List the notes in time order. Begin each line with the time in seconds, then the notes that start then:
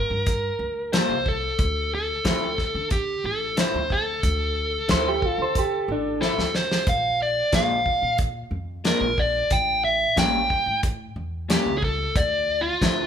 Already playing: A#4
0.10 G2
0.26 kick, closed hi-hat
0.59 D2
0.93 G3 A#3 F4 A4 C5, snare, closed hi-hat
1.09 C2
1.26 A4, kick
1.58 D2, kick, closed hi-hat
1.95 A4
2.24 D2 D3 F3 C4 E4, kick, snare, closed hi-hat
2.58 kick, snare
2.75 D3
2.91 G4, kick, closed hi-hat
3.24 A1 A4
3.57 D3 F3 C4 E4 C5, snare, closed hi-hat
3.74 D2
3.90 A4, kick
4.23 D2, kick, closed hi-hat
4.88 D2 D3 F3 C4 E4 C5, kick, snare, closed hi-hat
5.08 G4
5.22 F4, kick
5.38 D3
5.42 C5
5.55 G4, kick, closed hi-hat
5.88 A1 D4
6.21 D3 F3 C4 E4 A4, snare
6.38 D2, snare
6.55 C5, snare
6.71 snare
6.87 A#1 F5, kick, closed hi-hat
7.22 D5
7.52 A#1 A#2 F3 G#3 D4 F5, kick, snare, closed hi-hat
7.86 kick
8.02 A#2
8.18 kick, closed hi-hat
8.51 F2
8.84 A#2 F3 G#3 D4 A#4, snare, closed hi-hat
9.01 A#1
9.18 D5, kick
9.50 A1 G5, kick, closed hi-hat
9.85 E5
10.16 A1 A2 G3 A#3 C#4 G5, kick, snare, closed hi-hat
10.50 kick
10.66 A2
10.83 kick, closed hi-hat
11.16 E2
11.49 A2 G3 A#3 C#4 G4, snare, closed hi-hat
11.66 C#2
11.78 G#4
11.82 A4, kick
12.16 D2 D5, kick, closed hi-hat
12.61 F4
12.81 D2 D3 F3 C4 E4, kick, snare, closed hi-hat